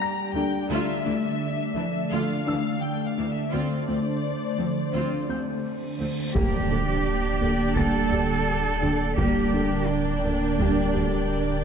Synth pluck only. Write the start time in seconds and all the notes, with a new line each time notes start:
0.36 D4
0.71 D3
1.07 A3
1.78 F3
2.13 D3
2.47 D4
3.18 A3
3.53 D3
3.88 A3
4.59 F3
4.94 D3
5.29 C4
6.00 A3
6.35 G3
6.71 D4
7.41 A#3
7.77 G3
8.13 G4
8.83 D4
9.18 G3
9.54 D4
10.24 A#3
10.59 G3
10.94 G4